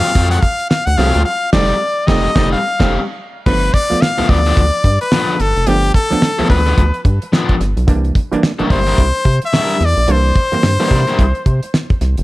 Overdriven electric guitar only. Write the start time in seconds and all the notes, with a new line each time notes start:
0.15 F#3 C4 F4 A4
0.98 F#3 C4 F4 A4
1.53 G3 C4 D#4 A4
2.07 G3 C4 D#4 A4
2.35 G3 C4 D#4 A4
2.80 G3 C4 D#4 A4
4.18 F3 B3 D4 A4
4.46 F3 B3 D4 A4
5.12 F3 B3 D4 A4
6.39 F3 B3 D4 A4
6.66 F3 B3 D4 A4
7.33 F3 B3 D4 A4
8.59 G3 D4 E4 A#4
8.87 G3 D4 E4 A#4
9.53 G3 D4 E4 A#4
10.80 G3 D4 E4 A#4
11.08 G3 D4 E4 A#4